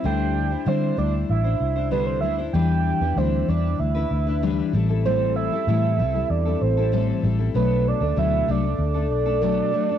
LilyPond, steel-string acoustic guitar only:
\new Staff \with { instrumentName = "Steel-string acoustic guitar" } { \time 4/4 \key e \minor \tempo 4 = 96 <d g d' e' c''>8. <d' e' c''>16 <d g d' e' c''>8 <g d' e' c''>8. <d' e' c''>8 <d' e' c''>16 <d g d' e' c''>8 <g d' e' c''>16 <d' e' c''>16 | <e g d' e' b'>8. <d' e' b'>16 <e g d' e'>8 <g d' e' b'>8. <d' e' b'>8 <d' e' b'>16 <e g d' e' b'>8 <g c' e' a'>16 <g c' e' a'>16 | <a, e g c' e' a'>8. <g c' e' a'>16 <a, e g c' e' a'>8 <g c' e' a'>16 <g c' e' a'>8 <g c' e' a'>8 <g c' e' a'>16 <a, e g c' e' a'>8 <g c' e' a'>16 <g c' e' a'>16 | <b, fis a d' a'>8. <a d' a'>16 <b, fis a d' a'>8 <fis a d' a'>16 <a d' a'>8 <a d' a'>8 <a d' a'>16 <b, fis a d' a'>8 <fis a d' a'>16 <a d' a'>16 | }